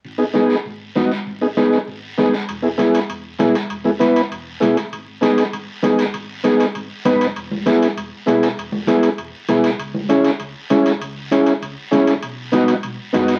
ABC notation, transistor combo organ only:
X:1
M:4/4
L:1/8
Q:1/4=197
K:G#m
V:1 name="Transistor combo organ"
z [B,DG] [B,DG] z3 [B,DF] z | z [B,DG] [B,DG] z3 [B,DG] z | z [B,EG] [B,EG] z3 [B,EG] z | z [B,EG] [B,EB] z3 [B,EG] z |
z2 [B,DG] z3 [B,DG] z | z2 [B,DG] z3 [B,DB] z | z2 [B,EG] z3 [B,EG] z | z2 [B,EG] z3 [B,EG] z |
z2 [CEG] z3 [CEG] z | z2 [CEG] z3 [CEG] z | z2 [B,DF] z3 [B,DF] z |]